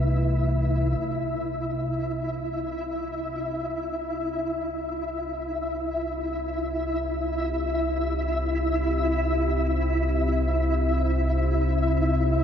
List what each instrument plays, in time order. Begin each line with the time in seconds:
Already playing: synth drone C2 C3, analog synth pad A3 E4 B4, synth texture E4 E5
0.96 synth drone C2 C3, analog synth pad C4, synth texture E4 E5
2.32 analog synth pad G4
4.64 analog synth pad C5